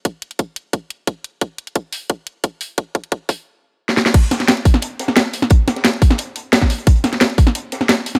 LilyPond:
\new DrumStaff \with { instrumentName = "Drums" } \drummode { \time 4/4 \tempo 4 = 176 <hh bd>8 hh16 hh16 <hh bd>8 hh8 <hh bd>8 hh8 <hh bd>8 hh8 | <hh bd>8 hh16 hh16 <hh bd>8 hho8 <hh bd>8 hh8 <hh bd>8 hho8 | <hh bd>8 <hh bd>16 hh16 <hh bd>8 <hho bd>8 r4 r16 sn16 sn16 sn16 | <cymc hh bd>16 hh16 <hh sn>16 <hh sn>16 <hh sn>16 hh16 <hh hho bd>16 sn16 hh8 <hh sn>16 sn16 <hh sn>16 sn16 <hh hho>16 sn16 |
<hh bd>8 <hh sn>16 <hh sn>16 <hh sn>16 hh16 <hh hho bd>16 sn16 hh8 hh8 <hh sn>16 <bd sn>16 <hh hho>16 hh16 | <hh bd>16 hh16 <hh sn>16 <hh sn>16 <hh sn>16 hh16 <hh hho bd>16 sn16 hh8 <hh sn>16 sn16 <hh sn>16 sn16 <hh hho>16 sn16 | }